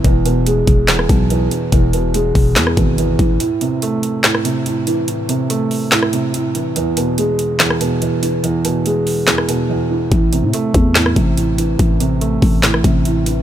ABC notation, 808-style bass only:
X:1
M:4/4
L:1/16
Q:1/4=143
K:Am
V:1 name="808-style bass" clef=bass
E,,,6 E,,,4 B,,,4 z2 | E,,,6 E,,,2 E,,2 ^G,,,4 A,,,2 | z16 | z16 |
z16 | z16 | A,,,3 A,, z2 E,,4 A,,,6 | A,,,6 A,,,2 ^G,,, A,,, A,,,6 |]